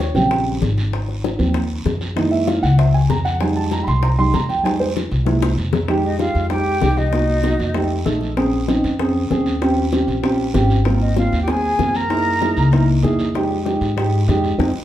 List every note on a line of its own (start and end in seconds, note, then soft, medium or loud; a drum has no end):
0.00 0.14 C#5 medium
0.00 high bongo medium
0.00 short guiro medium
0.14 0.58 A#1 loud
0.14 0.59 C#3 medium
0.14 0.59 F3 soft
0.14 0.59 G3 soft
0.14 0.59 C4 medium
0.14 0.44 G5 medium
0.14 high bongo soft
0.14 short guiro medium
0.31 high bongo medium
0.31 long guiro medium
0.62 1.34 G#1 medium
0.62 high bongo soft
0.62 low bongo medium
0.62 short guiro medium
0.78 high bongo soft
0.78 short guiro medium
0.93 high bongo medium
0.93 long guiro medium
1.09 high bongo soft
1.24 high bongo medium
1.24 short guiro medium
1.39 1.82 D#2 medium
1.39 1.60 F3 soft
1.39 1.60 A#3 soft
1.39 1.60 C4 medium
1.39 high bongo soft
1.39 short guiro medium
1.54 high bongo medium
1.54 long guiro medium
1.85 2.58 F#2 medium
1.85 high bongo soft
1.85 low bongo medium
1.85 short guiro medium
2.01 high bongo soft
2.01 short guiro medium
2.16 2.61 E3 medium
2.16 2.61 G#3 soft
2.16 2.61 A#3 soft
2.16 2.61 D#4 medium
2.16 2.32 D#5 medium
2.16 high bongo medium
2.16 long guiro medium
2.31 2.47 E5 medium
2.31 high bongo soft
2.47 2.63 F5 medium
2.47 high bongo medium
2.47 short guiro medium
2.63 3.06 C#2 loud
2.63 2.78 F#5 medium
2.63 high bongo soft
2.63 short guiro medium
2.78 2.94 E5 medium
2.78 high bongo medium
2.78 long guiro medium
2.94 3.09 G#5 medium
3.09 3.82 F2 medium
3.09 3.25 A#5 medium
3.09 high bongo soft
3.09 low bongo medium
3.09 short guiro medium
3.25 3.40 F#5 medium
3.25 high bongo soft
3.25 short guiro medium
3.40 3.85 G3 medium
3.40 3.85 G#3 medium
3.40 3.85 D#4 medium
3.40 3.56 G#5 medium
3.40 high bongo medium
3.40 long guiro medium
3.56 3.71 A5 medium
3.56 high bongo soft
3.71 3.87 A#5 medium
3.71 high bongo medium
3.71 short guiro medium
3.83 3.86 B5 medium
3.83 short guiro medium
3.87 4.31 C2 loud
3.87 4.03 C6 loud
3.87 high bongo soft
4.03 4.18 A#5 medium
4.03 high bongo medium
4.03 long guiro medium
4.18 4.32 G3 medium
4.18 4.32 G#3 soft
4.18 4.33 D#4 medium
4.18 4.34 C6 loud
4.34 5.06 F2 medium
4.34 4.49 A#5 medium
4.34 high bongo soft
4.34 low bongo medium
4.34 short guiro medium
4.49 4.64 G5 medium
4.49 high bongo soft
4.49 short guiro medium
4.63 4.84 G3 medium
4.63 4.85 G#3 soft
4.63 4.85 D#4 medium
4.63 4.79 G#5 medium
4.63 high bongo medium
4.63 long guiro medium
4.80 4.89 C5 medium
4.80 high bongo soft
4.96 high bongo medium
4.96 short guiro medium
5.11 5.55 C2 medium
5.11 high bongo soft
5.11 short guiro medium
5.25 5.47 G#3 medium
5.25 5.47 A#3 soft
5.25 5.47 E4 medium
5.25 high bongo medium
5.25 long guiro medium
5.42 high bongo medium
5.58 6.30 F2 medium
5.58 short guiro medium
5.73 low bongo medium
5.73 short guiro medium
5.88 6.10 G#3 medium
5.88 6.10 D#4 medium
5.88 6.10 G4 loud
5.88 high bongo medium
5.88 long guiro medium
6.04 6.19 D#4 medium
6.04 6.19 D#5 medium
6.04 high bongo soft
6.19 6.41 G#3 medium
6.19 6.41 D#4 medium
6.19 6.49 F4 medium
6.19 6.41 G4 medium
6.19 6.49 F5 medium
6.19 high bongo medium
6.19 short guiro medium
6.35 6.78 F2 medium
6.35 high bongo soft
6.35 short guiro medium
6.50 6.72 G#3 medium
6.50 6.72 D#4 medium
6.50 6.72 G4 medium
6.50 6.99 G4 medium
6.50 6.99 G5 loud
6.50 high bongo medium
6.50 long guiro medium
6.81 7.54 C2 medium
6.81 7.03 G#3 medium
6.81 7.03 D#4 medium
6.81 7.03 G4 medium
6.81 high bongo soft
6.81 low bongo medium
6.81 short guiro medium
6.97 7.91 D#4 medium
6.97 7.91 D#5 medium
6.97 high bongo soft
6.97 short guiro medium
7.12 7.34 A#3 medium
7.12 7.34 D#4 medium
7.12 7.34 F#4 medium
7.12 high bongo medium
7.12 long guiro medium
7.28 high bongo soft
7.43 7.65 A#3 medium
7.43 7.66 D#4 medium
7.43 7.66 F#4 medium
7.43 high bongo medium
7.43 short guiro medium
7.59 8.03 F2 medium
7.59 high bongo soft
7.59 short guiro medium
7.74 7.96 A3 medium
7.74 7.97 D#4 medium
7.74 7.97 G4 medium
7.74 high bongo medium
7.74 long guiro medium
8.05 8.78 A#1 medium
8.05 8.28 A3 medium
8.05 8.28 D#4 medium
8.05 8.28 A4 loud
8.05 high bongo soft
8.05 low bongo medium
8.05 short guiro medium
8.21 high bongo soft
8.21 short guiro medium
8.37 8.59 C4 medium
8.37 8.59 C#4 medium
8.37 8.59 G#4 medium
8.37 high bongo medium
8.37 long guiro medium
8.53 high bongo soft
8.68 8.90 C4 medium
8.68 8.90 C#4 medium
8.68 8.90 D#4 medium
8.68 high bongo medium
8.68 short guiro medium
8.84 9.27 F2 medium
8.84 high bongo soft
8.84 short guiro medium
8.99 9.21 C4 medium
8.99 9.21 C#4 medium
8.99 9.21 G#4 medium
8.99 high bongo medium
8.99 long guiro medium
9.30 10.03 D#2 medium
9.30 9.52 C4 medium
9.30 9.52 C#4 medium
9.30 9.52 G#4 loud
9.30 high bongo soft
9.30 low bongo medium
9.30 short guiro medium
9.46 high bongo soft
9.46 short guiro medium
9.62 9.83 C4 medium
9.62 9.83 C#4 medium
9.62 9.83 F4 medium
9.62 9.83 G4 medium
9.62 high bongo medium
9.62 long guiro medium
9.78 high bongo soft
9.92 10.14 C4 medium
9.92 10.14 C#4 medium
9.92 10.14 F4 medium
9.92 10.14 G4 medium
9.92 high bongo medium
9.92 short guiro medium
10.08 10.51 A#1 medium
10.08 high bongo soft
10.08 short guiro medium
10.23 10.45 C4 medium
10.23 10.45 C#4 medium
10.23 10.45 F4 medium
10.23 10.45 G4 medium
10.23 high bongo medium
10.23 long guiro medium
10.54 11.27 G#1 medium
10.54 10.76 C4 medium
10.54 10.76 C#4 medium
10.54 10.76 F4 medium
10.54 10.76 G4 loud
10.54 high bongo soft
10.54 low bongo medium
10.54 short guiro medium
10.70 high bongo soft
10.70 short guiro medium
10.85 11.08 A#3 medium
10.85 11.08 C4 medium
10.85 11.08 F4 medium
10.85 high bongo medium
10.85 long guiro medium
11.01 11.17 D#4 medium
11.01 11.16 D#5 medium
11.01 high bongo soft
11.16 11.38 A#3 medium
11.16 11.39 C4 medium
11.16 11.39 F4 medium
11.16 11.40 F4 medium
11.16 11.40 F5 medium
11.16 high bongo medium
11.16 short guiro medium
11.32 11.76 D#2 medium
11.32 high bongo soft
11.32 short guiro medium
11.42 11.52 G4 medium
11.42 11.51 G5 medium
11.47 11.70 A#3 medium
11.47 11.70 C4 medium
11.47 11.70 F4 medium
11.47 11.98 G#4 medium
11.47 11.98 G#5 medium
11.47 high bongo medium
11.47 long guiro medium
11.78 12.51 F#2 medium
11.78 12.01 A#3 medium
11.78 12.01 C4 medium
11.78 12.01 F4 medium
11.78 high bongo soft
11.78 low bongo medium
11.78 short guiro medium
11.95 12.89 A#4 medium
11.95 12.89 A#5 loud
11.95 high bongo soft
11.95 short guiro medium
12.09 12.32 A#3 medium
12.09 12.32 D#4 medium
12.09 12.32 E4 medium
12.09 12.32 G#4 medium
12.09 high bongo medium
12.09 long guiro medium
12.26 high bongo soft
12.41 12.63 A#3 medium
12.41 12.63 D#4 medium
12.41 12.63 E4 medium
12.41 12.63 G#4 medium
12.41 high bongo medium
12.41 short guiro medium
12.57 13.00 C#2 medium
12.57 high bongo soft
12.57 short guiro medium
12.72 12.94 A#3 medium
12.72 12.94 D#4 medium
12.72 12.94 E4 medium
12.72 12.95 A#4 medium
12.72 high bongo medium
12.72 long guiro medium
13.03 13.76 F2 medium
13.03 13.25 A#3 medium
13.03 13.25 D#4 medium
13.03 13.25 E4 medium
13.03 13.25 G#4 loud
13.03 high bongo soft
13.03 low bongo medium
13.03 short guiro medium
13.19 high bongo soft
13.19 short guiro medium
13.35 13.57 G#3 medium
13.35 13.57 D#4 medium
13.35 13.57 G4 medium
13.35 high bongo medium
13.35 long guiro medium
13.51 high bongo soft
13.65 13.87 G#3 medium
13.65 13.87 D#4 medium
13.65 13.88 G4 medium
13.65 high bongo medium
13.65 short guiro medium
13.81 14.25 G#2 medium
13.81 high bongo soft
13.81 short guiro medium
13.97 14.19 G#3 medium
13.97 14.19 D#4 medium
13.97 14.19 G4 medium
13.97 high bongo medium
13.97 long guiro medium
14.28 14.57 F2 medium
14.28 14.50 G#3 loud
14.28 14.50 D#4 medium
14.28 14.50 G4 loud
14.28 high bongo soft
14.28 low bongo medium
14.28 short guiro medium
14.44 high bongo soft
14.44 short guiro medium
14.58 14.71 F2 medium
14.58 14.69 C4 loud
14.58 14.69 D#4 medium
14.58 14.69 F4 medium
14.58 high bongo loud
14.58 long guiro medium